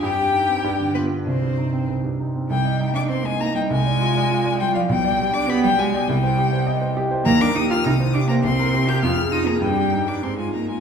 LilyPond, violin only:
\new Staff \with { instrumentName = "Violin" } { \time 2/4 \key c \minor \tempo 4 = 100 g''4. b'8 | c''4 r4 | g''8. d'''16 c'''16 aes''16 bes''16 g''16 | aes''4. g''16 f''16 |
g''8. d'''16 b''16 g''16 aes''8 | g''4. r8 | \key ees \major bes''16 d'''16 ees'''16 f'''16 ees'''8 d'''16 bes''16 | c'''8. g'''16 f'''8 ees'''16 bes''16 |
g''8. d'''16 c'''16 aes''16 bes''16 aes''16 | }